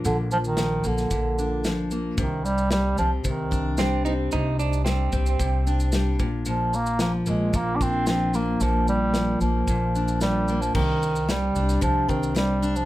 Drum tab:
CC |----------------|----------------|----------------|----------------|
SH |x-xxx-xxx-x-x-x-|x-xxx-x-x-x-x-x-|x-xxx-xxx-xxx-x-|x-xxx-x-x-x-x-x-|
SD |----o--o----o---|----o-------o---|----o-------o---|----o-------o---|
BD |--------o-------|o-------o-o-----|------o-o-----o-|--------o-o-----|

CC |----------------|x---------------|
SH |x-x-x-x-x-xxx-xx|--xxx-xxx-xxx-xx|
SD |----o-------o---|----o--o----o---|
BD |--------o-------|o-------o-o-----|